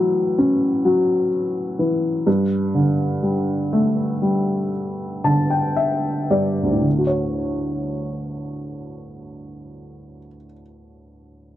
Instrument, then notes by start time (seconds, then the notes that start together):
upright piano
Already playing: A2 E3 F#3
0.38 C#4
0.85 F#3
1.79 E3
2.27 G2
2.75 D3
3.23 G3
3.73 A3
4.22 G3
5.24 D3 A5
5.50 G5
5.76 E5
6.30 G2 D5
6.63 D2
6.72 A2
6.81 D3
6.89 A3
6.98 F#4
7.07 C#5